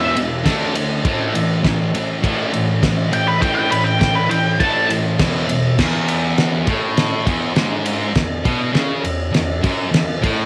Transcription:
Already playing: E2 B2 E3 E5
0.16 E2 B2, ride
0.44 D3 A3 D4, kick, snare, ride
0.75 D3 A3, ride
1.04 A2 E3 A3, kick, ride
1.34 A2 E3, ride
1.63 A2 E3, kick, snare, ride
1.94 A2 E3, ride
2.23 A2 E3 A3, kick, ride
2.53 A2 E3, ride
2.82 A2 E3, kick, snare, ride
3.12 A2 E3 G5, ride
3.28 B4
3.41 A2 E3 A3 G5, kick, ride
3.55 G5
3.71 A2 E3 B4, ride
3.84 G5
3.99 A2 E3 G5, kick, snare, ride
4.15 B4
4.29 A2 E3 G5, ride
4.59 A2 E3 A3 A5, kick, ride
4.89 A2 E3, ride
5.18 E2 B2 E3, kick, snare, ride
5.48 E2 B2, ride
5.78 E2, kick, snare, crash
6.08 ride
6.38 snare, ride
6.67 A2, kick, ride
6.97 snare, ride
7.26 E2, kick, ride
7.55 G#2, snare, ride
7.86 ride
8.14 E2, kick, snare, ride
8.44 B2, kick, ride
8.73 C#3, snare, ride
9.03 E2, ride
9.31 E2, snare, ride
9.62 F#2, kick, ride
9.92 E2, snare, ride
10.21 A2, kick, ride

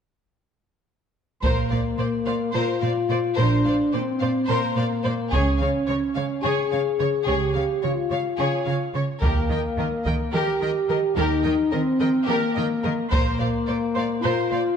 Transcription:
1.43 A#1 A#2 A#3 A#4 C5, taiko
1.70 A#2 C5 D5 F5
1.98 A#2 C5 D5
2.26 A#2 C5 D5 F5
2.53 A#2 F4 A#4 C5
2.82 A#2 C5 D5 F5
3.09 A#2 C5 D5
3.37 A#1 A#2 D4 A#4 C5
3.65 A#2 C5 D5 F5
3.93 A#2 C4 C5 D5
4.20 A#2 C5 D5 F5
4.48 A#2 A#3 A#4 C5
4.76 A#2 C5 D5 F5
5.04 A#2 C5 D5
5.30 C#2 C#3 C#4 G#4 C#5, taiko
5.59 C#3 C#5 F5
5.87 C#3 C#5
6.15 C#3 C#5 F5
6.43 C#3 G#4 C#5
6.71 C#3 C#5 F5
6.99 C#3 C#5
7.26 C#2 C#3 G4 G#4 C#5
7.54 C#3 C#5 F5
7.82 C#3 F4 C#5
8.10 C#3 C#5 F5
8.37 C#3 G#4 C#5
8.66 C#3 C#5 F5
8.94 C#3 C#5
9.21 D#2 D#3 A#3 G4 A#4, taiko
9.49 D#3 A#4 D#5 G5
9.77 D#3 A#4 D#5
10.05 D#3 A#4 D#5 G5, taiko
10.33 D#3 G4 A#4
10.61 D#3 A#4 D#5 G5
10.89 D#3 A#4 D#5
11.16 D#2 D#3 D#4 G4 A#4
11.44 D#3 A#4 D#5 G5
11.71 D#3 C4 A#4 D#5
12.00 D#3 A#4 D#5 G5
12.27 D#3 A#3 G4 A#4
12.55 D#3 A#4 D#5 G5
12.84 D#3 A#4 D#5
13.10 A#1 A#2 A#3 A#4 C5, taiko
13.39 A#2 C5 D5 F5
13.67 A#2 C5 D5
13.95 A#2 C5 D5 F5
14.22 A#2 F4 A#4 C5
14.50 A#2 C5 D5 F5

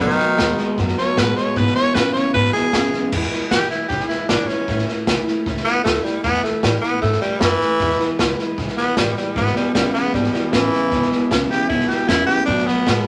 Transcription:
0.00 B1 B2 D#3 F#3 A3 B3 F#4
0.09 snare
0.18 B2 F#3 A3 B3 F#4, muted upright bass stroke, snare
0.38 D#2 B2 D#3 G#3 A3 B3 F#4, kick, snare, hi-hat pedal
0.58 B2 G#3 A3 B3 F#4, muted upright bass stroke, snare
0.77 F#2 B2 D#3 F#3 A3 B3 F#4, kick, snare
0.88 snare
0.97 B2 F#3 A3 B3 F#4 C#5, snare
1.16 A2 B2 D#3 G#3 A3 B3 F#4 B4, kick, snare, hi-hat pedal
1.36 B2 G#3 A3 B3 F#4 C#5, snare
1.55 E2 G#2 B2 E3 G#3 B3 E4 B4, kick, snare
1.66 snare
1.74 E2 B2 E3 G#3 B3 E4 C#5, snare
1.94 E2 B2 C#3 E3 G#3 B3 E4 B4, kick, snare, hi-hat pedal
2.13 E2 C#3 E3 G#3 B3 E4 C#5, muted upright bass stroke, snare
2.33 E2 G#2 B2 E3 G#3 B3 E4 B4, kick, snare
2.44 snare
2.53 E2 B2 E3 G#3 B3 E4 G#4, snare
2.72 E2 F#2 B2 C#3 E3 G#3 B3 E4, kick, snare, hi-hat pedal
2.92 E2 C#3 E3 G#3 B3 E4, muted upright bass stroke, snare
3.12 E2 B2 E3 G#3 B3 E4, kick, snare, crash
3.22 snare
3.31 E3 G#3 B3 E4, snare
3.51 A1 E2 B2 E3 G#3 B3 E4 G4, kick, snare, hi-hat pedal
3.70 E3 G#3 B3 E4, snare
3.88 B1 E3 G#3 B3 E4 G4, kick, snare
4.00 snare
4.08 E3 G#3 B3 E4, muted upright bass stroke, snare
4.29 A#1 E2 B2 E3 G#3 B3 D4 E4, kick, snare, hi-hat pedal
4.47 G#3 B3 C#4 E4, muted upright bass stroke, snare
4.51 E3
4.68 A1 A2 E3 A3 C#4 E4, kick, snare
4.78 snare
4.87 A3 C#4 E4, snare
5.07 B1 A2 E3 A3 C#4 E4, kick, snare, hi-hat pedal
5.26 A3 C#4 E4, muted upright bass stroke, snare
5.46 C#2 E3 A3 C#4 E4, kick, snare
5.57 snare
5.64 A3 B3 C#4 E4, muted upright bass stroke, snare
5.84 D2 A2 E3 A3 C#4 E4, kick, snare, hi-hat pedal
6.03 G3 A3 C#4 E4, snare
6.23 E2 A2 E3 A3 B3 C#4 E4, kick, snare
6.34 snare
6.43 A3 C#4 E4, snare
6.63 A2 E3 G3 A3 C#4 E4, kick, snare, hi-hat pedal
6.82 A3 B3 C#4 E4, muted upright bass stroke, snare
7.02 G#2 E3 A3 C#4 E4, kick, snare
7.12 snare
7.21 G3 A3 C#4 E4, snare
7.40 F#2 A2 E3 A3 C#4 E4, kick, snare, hi-hat pedal
7.60 A3 C#4 E4, snare
7.79 E2 B2 E3 G#3 B3 E4, kick, snare
7.90 snare
7.99 E3 G#3 B3 E4, muted upright bass stroke, snare
8.18 C#2 E2 B2 E3 G#3 B3 E4, kick, snare, hi-hat pedal
8.38 E3 G#3 B3 E4, muted upright bass stroke, snare
8.58 B1 E3 G#3 B3 E4, kick, snare
8.68 snare
8.77 E3 G#3 B3 E4, muted upright bass stroke, snare
8.97 A1 E2 B2 E3 G3 G#3 B3 E4, kick, snare, hi-hat pedal
9.17 E3 G3 G#3 B3 E4, snare
9.35 G#1 E2 B2 E3 G#3 B3 E4, kick, snare
9.46 snare
9.55 E2 B2 E3 G3 G#3 B3 E4, snare
9.74 B1 E2 B2 C#3 E3 G3 G#3 B3 E4, kick, snare, hi-hat pedal
9.93 E2 C#3 E3 G#3 B3 E4, muted upright bass stroke, snare
10.13 G#1 E2 B2 E3 G3 G#3 B3 E4, kick, snare
10.24 snare
10.32 E2 B2 E3 G3 G#3 B3 E4, snare
10.52 A1 E2 B2 C#3 E3 G#3 B3 E4, kick, snare, hi-hat pedal
10.71 E2 C#3 E3 G#3 B3 E4, snare
10.92 B1 E2 B2 E3 G#3 B3 E4, kick, snare
11.02 snare
11.10 E2 B2 E3 G#3 B3 E4, muted upright bass stroke, snare
11.30 C#2 E2 B2 C#3 E3 G#3 B3 E4, kick, snare, hi-hat pedal
11.50 E2 C#3 E3 G#3 B3 E4 G4, snare
11.69 B1 E2 B2 E3 G#3 B3 E4, kick, snare
11.80 snare
11.88 E2 B2 E3 G#3 B3 E4 G4, muted upright bass stroke, snare
12.08 E2 B2 C#3 E3 G#3 B3 E4, kick, snare, hi-hat pedal
12.26 E2 C#3 E3 G#3 B3 E4 G4, muted upright bass stroke, snare
12.45 B2 D#3 F#3 A3 B3 D4 F#4, kick, snare
12.58 snare
12.66 B2 F#3 A3 B3 F#4, muted upright bass stroke, snare
12.85 A2 B2 D#3 G#3 A3 B3 F#4, kick, snare, hi-hat pedal

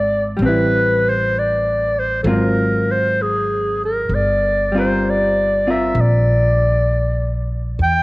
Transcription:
Already playing: G#1 F3 A3 D4 G4 D5
0.37 A1 G3
0.42 C4 B4
0.48 E4
1.09 C5
1.39 D5
1.99 C5
2.23 G#1 F#3 C4 A4
2.27 F4 A#4
2.92 C5
3.22 G#4
3.85 A#4
4.09 G1
4.14 D5
4.72 G3 C4 F4
4.78 A#4 C5
5.10 D5
5.67 C4 F4 A#4 E5
5.95 A#1
6.01 D5
7.79 E2 G5

